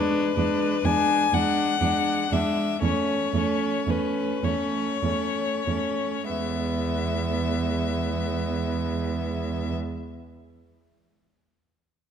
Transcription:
Already playing: viola G#3, violin D4 B4
0.37 cello E2, viola G#3, violin D4
0.84 cello E2, viola G#3, violin D4 G#5
1.32 cello E2, viola G#3, violin D4 F#5
1.80 cello E2, viola G#3, violin D4
2.31 cello E2, viola G#3, violin D4 E5
2.81 cello E2, viola A3, violin C#4 C#5
3.33 cello E2, viola A3, violin C#4
3.86 cello E2, viola A3, violin C#4 B4
4.44 cello E2, viola A3, violin C#4 C#5
5.03 cello E2, viola A3, violin C#4
5.67 cello E2, viola A3, violin C#4
6.30 cello E2, viola G#3, violin B3 E5

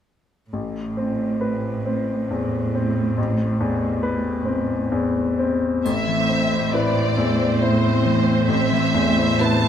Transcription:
0.52 grand piano A1, cello section A2
0.97 grand piano C4
1.41 grand piano B4
1.86 grand piano C4
2.31 grand piano E2
2.75 grand piano C4
3.17 grand piano A1
3.60 grand piano E2
4.03 grand piano B4
4.45 grand piano C4
4.92 grand piano E2
5.39 grand piano C4
5.85 grand piano A1, harp A2, cello section A2, viola section C4 C5, violin section E5, triangle
6.07 harp E3
6.28 harp C4, grand piano C4
6.51 harp E4
6.73 grand piano E4 B4, violin section D5, harp B5
6.95 harp C5
7.17 grand piano E2, harp E5
7.39 harp C5
7.60 harp E4, grand piano E4 C5, violin section C5
7.83 harp C4
8.04 harp E3, grand piano C4
8.27 harp C4
8.48 grand piano A1, harp A2, violin section E5
8.71 harp E3
8.94 grand piano E2, harp C4
9.17 harp E4
9.40 grand piano E4 B4, harp B4, violin section A5
9.63 harp C5

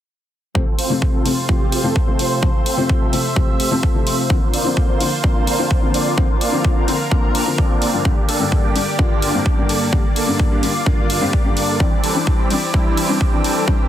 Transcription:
0.55 grand piano C3 F3 A3 C4, analog synth pad C3 A3 F4 C5, supersaw synth C4 F4 A4, kick
0.78 supersaw synth C4 F4 C5, open hi-hat
0.90 grand piano C3 F3 A3 C4
1.02 kick
1.14 supersaw synth C4 F4 A4
1.25 grand piano C3 F3 A3 C4, open hi-hat
1.48 grand piano C3 F3 A3 C4, supersaw synth C4 F4 G4, kick
1.72 open hi-hat
1.83 grand piano C3 F3 A3 C4, supersaw synth C4 F4 A4
1.96 kick
2.07 grand piano C3 F3 A3 C4
2.19 supersaw synth C4 F4 C5, open hi-hat
2.42 grand piano C3 F3 A3 C4, supersaw synth C4 F4 A4, analog synth pad E5, kick
2.66 supersaw synth C4 F4 C5, open hi-hat
2.77 grand piano C3 F3 A3 C4
2.89 kick
3.01 supersaw synth C4 F4 A4
3.12 grand piano C3 F3 A3 C4, open hi-hat
3.36 grand piano C3 F3 A3 C4, supersaw synth C4 F4 G4, kick
3.60 open hi-hat
3.71 grand piano C3 F3 A3 C4, supersaw synth C4 F4 A4
3.83 kick
3.94 grand piano C3 F3 A3 C4
4.07 supersaw synth C4 F4 C5, open hi-hat
4.29 grand piano D3 F3 A#3 C4, analog synth pad D3 A#3 F4 C5, supersaw synth A#3 C4 D4 F4 C5, kick
4.54 supersaw synth A#3 C4 D4 F4 D5, open hi-hat
4.64 grand piano D3 F3 A#3 C4
4.77 kick
4.89 supersaw synth A#3 C4 D4 F4 C5
5.00 grand piano D3 F3 A#3 C4, open hi-hat
5.23 grand piano D3 F3 A#3 C4, supersaw synth A#3 C4 D4 F4 A#4, kick
5.47 open hi-hat
5.58 grand piano D3 F3 A#3 C4, supersaw synth A#3 C4 D4 F4 C5
5.71 kick
5.82 grand piano D3 F3 A#3 C4
5.94 supersaw synth A#3 C4 D4 F4 D5, open hi-hat
6.17 grand piano D3 F3 A#3 C4, supersaw synth A#3 C4 D4 F4 C5, analog synth pad A#4, kick
6.41 supersaw synth A#3 C4 D4 F4 D5, open hi-hat
6.52 grand piano D3 F3 A#3 C4
6.65 kick
6.76 supersaw synth A#3 C4 D4 F4 C5
6.87 grand piano D3 F3 A#3 C4, open hi-hat
7.11 grand piano D3 F3 A#3 C4, supersaw synth A#3 C4 D4 F4 A#4, kick
7.35 open hi-hat
7.46 grand piano D3 F3 A#3 C4
7.58 supersaw synth A#3 C4 D4 F4 D5, kick
7.82 supersaw synth A#3 C4 D4 F4 D5, open hi-hat
7.93 grand piano G2 D3 F3 A#3 C4, supersaw synth A#3 C4 D4 F4 D5
8.05 grand piano G2 D3 G3 A#3 D4, supersaw synth A#3 D4 G4, analog synth pad G4 D5, kick
8.29 supersaw synth A#3 D4 A4, open hi-hat
8.40 grand piano G2 D3 G3 A#3 D4
8.52 kick
8.64 supersaw synth A#3 D4 G4
8.75 grand piano G2 D3 G3 A#3 D4, open hi-hat
8.98 grand piano G2 D3 G3 A#3 D4, supersaw synth A#3 D4 F4, kick
9.22 open hi-hat
9.34 grand piano G2 D3 G3 A#3 C4, supersaw synth A#3 D4 G4
9.46 kick
9.57 grand piano G2 D3 G3 A#3 D4
9.69 supersaw synth A#3 D4 A4, open hi-hat
9.92 grand piano G2 D3 G3 A#3 D4, supersaw synth A#3 D4 G4, analog synth pad F4, kick
10.16 supersaw synth A#3 D4 A4, open hi-hat
10.27 grand piano G2 D3 G3 A#3 D4
10.40 kick
10.51 supersaw synth A#3 D4 G4
10.62 grand piano G2 D3 G3 A#3 D4, open hi-hat
10.86 grand piano G2 D3 G3 A#3 D4, supersaw synth A#3 D4 F4, kick
11.10 open hi-hat
11.21 grand piano G2 D3 G3 A#3 C4, supersaw synth A#3 D4 G4
11.33 kick
11.44 grand piano G2 D3 G3 A#3 D4
11.57 supersaw synth A#3 D4 A4, open hi-hat
11.79 grand piano E3 G3 C4 D4, analog synth pad E3 C4 G4, supersaw synth E3 G3 C4 D4 G4, kick
12.04 supersaw synth E3 G3 C4 D4 A4, open hi-hat
12.15 grand piano E3 G3 C4 D4
12.27 kick
12.39 supersaw synth E3 G3 C4 D4 G4
12.50 grand piano E3 G3 C4 D4, open hi-hat
12.73 grand piano E3 G3 C4 D4, supersaw synth E3 G3 C4 D4 E4, kick
12.97 open hi-hat
13.08 grand piano E3 G3 C4 D4, supersaw synth E3 G3 C4 D4 G4
13.21 kick
13.32 grand piano E3 G3 C4 D4
13.44 supersaw synth E3 G3 C4 D4 A4, open hi-hat
13.67 grand piano E3 G3 C4 D4, supersaw synth E3 G3 C4 D4 G4, analog synth pad E5, kick

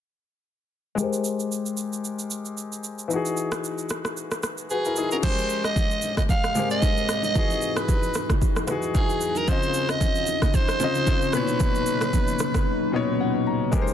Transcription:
0.95 grand piano G#3 G4, shaker
1.00 grand piano A#4 C5
1.13 shaker
1.25 shaker
1.40 shaker
1.52 shaker
1.66 shaker
1.77 shaker
1.93 shaker
2.05 shaker
2.19 shaker
2.31 shaker
2.45 shaker
2.57 shaker
2.72 shaker
2.84 shaker
2.99 shaker
3.08 grand piano E3 D#4, shaker
3.13 grand piano F#4 G#4
3.26 shaker
3.37 shaker
3.52 cross-stick, shaker
3.64 shaker
3.78 shaker
3.89 cross-stick, shaker
4.05 cross-stick, shaker
4.17 shaker
4.31 cross-stick, shaker
4.43 cross-stick, shaker
4.58 shaker
4.70 grand piano F#4 B4, soprano saxophone G#4, shaker
4.85 grand piano E4 A#4, shaker
4.96 grand piano D#4 G#4, shaker
5.11 grand piano C#4 F#4, soprano saxophone A#4, shaker
5.22 ambient pad G#2 C4 G4 A#4, grand piano G#3 G4 A#4 C5, soprano saxophone C5, kick, crash, low conga, shaker
5.38 shaker
5.49 shaker
5.64 soprano saxophone D#5, cross-stick, shaker
5.76 kick, high bongo, low conga, shaker
5.91 shaker
6.02 high bongo, shaker
6.17 soprano saxophone D#5, kick, cross-stick, low bongo, shaker
6.29 soprano saxophone F5, kick, low conga, shaker
6.44 cross-stick, shaker
6.55 grand piano G#3 G4 A#4 C5, low bongo, shaker
6.70 soprano saxophone D#5, shaker
6.82 kick, high bongo, shaker
6.97 shaker
7.09 cross-stick, shaker
7.23 soprano saxophone D#5, high bongo, shaker
7.34 ambient pad E2 D#4 F#4 G#4, grand piano E3 D#4 F#4, kick, low conga, shaker
7.39 grand piano G#4
7.50 shaker
7.62 shaker
7.77 soprano saxophone B4, cross-stick, shaker
7.88 kick, high bongo, low conga, shaker
8.03 shaker
8.14 cross-stick, high bongo, shaker
8.30 kick, cross-stick, low bongo, shaker
8.42 kick, low conga, shaker
8.56 cross-stick, shaker
8.67 grand piano E3 D#4 F#4, cross-stick, low bongo, shaker
8.71 grand piano G#4
8.82 shaker
8.95 soprano saxophone G#4, kick, high bongo, shaker
9.10 shaker
9.21 shaker
9.35 soprano saxophone A#4, high bongo, shaker
9.47 grand piano C#3 C4 F4 D#5, ambient pad C#3 C4 D#4 F4, soprano saxophone C5, kick, low conga, shaker
9.63 shaker
9.74 shaker
9.89 soprano saxophone D#5, cross-stick, shaker
10.01 kick, high bongo, low conga, shaker
10.15 shaker
10.27 high bongo, shaker
10.42 soprano saxophone D#5, kick, cross-stick, low bongo, shaker
10.54 soprano saxophone C5, kick, low conga, shaker
10.68 cross-stick, shaker
10.80 grand piano C#3 C4 F4 D#5, low bongo, shaker
10.95 shaker
11.07 kick, high bongo, shaker
11.22 shaker
11.33 grand piano A#2 B2 C#4 C#5, ambient pad C#3 F#3 C#4, soprano saxophone B4, cross-stick, shaker
11.42 grand piano D#4
11.47 high bongo, shaker
11.60 kick, low conga, shaker
11.75 shaker
11.86 shaker
12.01 cross-stick, low bongo, shaker
12.13 kick, high bongo, low conga, shaker
12.28 shaker
12.39 cross-stick, high bongo, shaker
12.54 kick, cross-stick, low bongo, shaker
12.92 grand piano A#2 B2 D#4 C#5 D#5
13.20 grand piano F#5
13.47 grand piano A#5
13.71 grand piano G#3 G4 A#4 B4, kick, low conga, shaker
13.82 grand piano C5
13.88 shaker

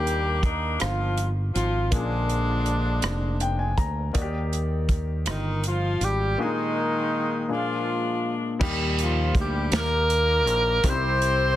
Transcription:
Already playing: fingered electric bass D#2, grand piano D#3 A#3 G4 D5, horn section G3 A#3 D4 G4
0.07 closed hi-hat
0.42 horn section D#3 D#4, kick, closed hi-hat
0.79 fingered electric bass G1, horn section F3 F4, cross-stick, closed hi-hat
1.17 closed hi-hat
1.53 fingered electric bass G#1, horn section F3 F4, closed hi-hat
1.91 fingered electric bass A#1, grand piano A#2 A#3 C#4 F4 G#4, horn section D3 F3 G#3 D4, kick, closed hi-hat
1.99 grand piano D4
2.29 closed hi-hat
2.66 closed hi-hat
3.02 fingered electric bass F1, cross-stick, closed hi-hat
3.40 grand piano G5, closed hi-hat
3.59 grand piano G#5
3.78 fingered electric bass D2, grand piano A#5, kick, closed hi-hat
4.13 fingered electric bass D#2, grand piano D#3 A#3 D#4 F#4 D5, kick, closed hi-hat
4.22 grand piano G4
4.53 closed hi-hat
4.89 kick, closed hi-hat
5.26 fingered electric bass G1, horn section D#3 D#4, cross-stick, closed hi-hat
5.63 horn section F3 F4, closed hi-hat
6.01 fingered electric bass G#1, horn section G3 G4, closed hi-hat
6.37 grand piano A#2 A#3 D4 F4 G#4, horn section G#3
6.42 horn section D#3 D#4, grand piano D#4
7.48 grand piano A#2 A#3 D4 F4 G#4, horn section G#3 D4
7.53 horn section F3 F4
8.59 fingered electric bass D#2, grand piano A#2 G3 A#3 D#4 G4, kick, crash
8.98 horn section F3 F4, closed hi-hat
9.35 fingered electric bass D2, kick, closed hi-hat
9.39 horn section G3 G4
9.72 fingered electric bass D#2, horn section A#3 D#4 G4 A#4, snare, closed hi-hat
10.10 closed hi-hat
10.47 fingered electric bass A#1, closed hi-hat
10.84 fingered electric bass C2, grand piano C3 G3 C4 D#4 G4, horn section C4 E4 G4 C5, kick, closed hi-hat
10.92 grand piano E4
11.22 closed hi-hat

